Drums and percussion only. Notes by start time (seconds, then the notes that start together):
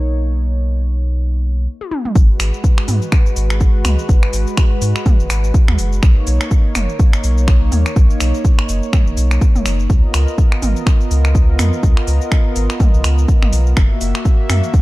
1.81 high tom
1.91 mid tom
2.05 mid tom
2.15 kick, shaker
2.40 finger snap, open hi-hat, shaker
2.54 shaker
2.64 kick, shaker
2.78 finger snap
2.88 mid tom, open hi-hat, shaker
3.02 shaker
3.12 finger snap, kick, shaker
3.26 shaker
3.36 open hi-hat, shaker
3.50 finger snap, shaker
3.61 kick, shaker
3.85 finger snap, mid tom, open hi-hat, shaker
3.99 shaker
4.09 kick, shaker
4.23 finger snap
4.33 open hi-hat, shaker
4.47 shaker
4.57 finger snap, kick, shaker
4.82 open hi-hat, shaker
4.96 finger snap, shaker
5.06 kick, mid tom, shaker
5.20 shaker
5.30 finger snap, open hi-hat, shaker
5.44 shaker
5.54 kick, shaker
5.68 finger snap, mid tom
5.78 open hi-hat, shaker
5.92 shaker
6.03 finger snap, kick, shaker
6.27 open hi-hat, shaker
6.41 finger snap, shaker
6.51 kick, shaker
6.75 finger snap, mid tom, open hi-hat, shaker
6.89 shaker
6.99 kick, shaker
7.13 finger snap, shaker
7.24 open hi-hat, shaker
7.38 shaker
7.48 finger snap, kick, shaker
7.72 mid tom, open hi-hat, shaker
7.86 finger snap, shaker
7.96 kick, shaker
8.10 shaker
8.20 finger snap, open hi-hat, shaker
8.34 shaker
8.45 kick, shaker
8.59 finger snap
8.69 open hi-hat, shaker
8.83 shaker
8.93 finger snap, kick, mid tom, shaker
9.07 shaker
9.17 open hi-hat, shaker
9.31 finger snap, shaker
9.41 kick, shaker
9.56 mid tom, shaker
9.66 finger snap, open hi-hat, shaker
9.80 shaker
9.90 kick, shaker
10.14 finger snap, open hi-hat, shaker
10.28 shaker
10.38 kick, shaker
10.52 finger snap
10.62 mid tom, open hi-hat, shaker
10.76 shaker
10.86 finger snap, kick, shaker
11.01 shaker
11.11 open hi-hat, shaker
11.25 finger snap, shaker
11.35 kick, shaker
11.59 finger snap, mid tom, open hi-hat, shaker
11.73 shaker
11.83 kick, shaker
11.97 finger snap
12.07 open hi-hat, shaker
12.21 shaker
12.32 finger snap, kick, shaker
12.56 open hi-hat, shaker
12.70 finger snap, shaker
12.80 kick, mid tom, shaker
12.94 shaker
13.04 finger snap, open hi-hat, shaker
13.18 shaker
13.28 kick, shaker
13.43 finger snap, mid tom
13.53 open hi-hat, shaker
13.67 shaker
13.77 finger snap, kick, shaker
14.01 open hi-hat, shaker
14.15 finger snap, shaker
14.25 kick, shaker
14.50 finger snap, mid tom, open hi-hat, shaker
14.64 shaker
14.74 kick, shaker